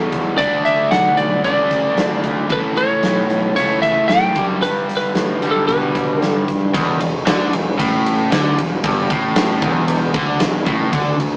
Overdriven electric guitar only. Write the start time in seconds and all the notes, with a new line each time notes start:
Already playing: E2 B2 E3
0.39 D3 A3 D4
1.45 D3 A3 D4
2.50 A2 E3 A3
3.56 A2 E3 A3
4.35 G2 D3 G3
5.42 G2 D3 G3
6.75 E2
7.02 E2
7.27 D3
7.54 E2
7.79 A2
8.32 D3
8.58 E2
8.85 G2
9.11 A2
9.63 E2
10.16 D3
10.42 E2
10.68 A2
10.93 D3
11.20 D3